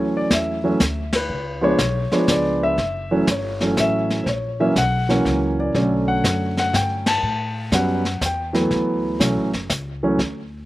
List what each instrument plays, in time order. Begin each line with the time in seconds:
Already playing: upright bass D2, grand piano E3 F#3 A3 C#4 C#5
0.17 grand piano D5
0.30 upright bass E2, grand piano E5, kick, snare, hi-hat pedal
0.64 grand piano E3 F#3 A3 C#4
0.80 upright bass D2, kick, snare, hi-hat pedal
1.13 grand piano B4, snare, ride
1.29 upright bass C#2, brush sweep
1.61 grand piano F3 G#3 B3 D4 C#5
1.79 upright bass B1, kick, snare, hi-hat pedal
2.12 grand piano F3 G#3 B3 D4 C#5, muted upright bass stroke, snare
2.28 upright bass C#2, grand piano D5, kick, snare, hi-hat pedal
2.63 grand piano E5
2.77 upright bass F#1, brush sweep, kick, snare
3.11 grand piano E3 F#3 A3 C#4
3.27 upright bass G1, kick, snare, hi-hat pedal
3.31 grand piano C#5
3.60 grand piano E3 F#3 A3 C#4, snare
3.77 upright bass A1, grand piano E5, kick, snare, hi-hat pedal
4.10 snare
4.24 upright bass A#1, grand piano C5, brush sweep, kick, snare
4.29 grand piano C#5
4.60 grand piano E3 F#3 A#3 C#4 E5
4.76 upright bass B1, grand piano F#5, kick, snare, hi-hat pedal
5.09 grand piano E3 F#3 A#3 C#4, snare
5.25 upright bass C#2, kick, snare
5.60 grand piano D5
5.75 upright bass B1, grand piano D3 F#3 A3 C#4, brush sweep, kick, snare
6.08 grand piano F#5
6.24 upright bass F#2, kick, snare, hi-hat pedal
6.57 grand piano F#5, snare
6.73 upright bass G2, grand piano G5, kick, snare, hi-hat pedal
7.06 grand piano A5, snare, ride
7.22 upright bass A2, brush sweep
7.72 upright bass F#2, grand piano F#3 G3 B3 C#4 F#5, kick, snare, hi-hat pedal
8.05 snare
8.21 upright bass E2, kick, snare, hi-hat pedal
8.26 grand piano G5
8.53 grand piano E3 F#3 A3 B3, snare
8.71 upright bass D2, brush sweep, kick, snare
9.19 upright bass B1, grand piano E3 F#3 A3 C#4, kick, snare, hi-hat pedal
9.37 upright bass A1
9.53 upright bass F#1, snare
9.70 upright bass C#2, kick, snare, hi-hat pedal
10.03 grand piano E3 F#3 A3 C#4
10.19 upright bass D2, brush sweep, kick, snare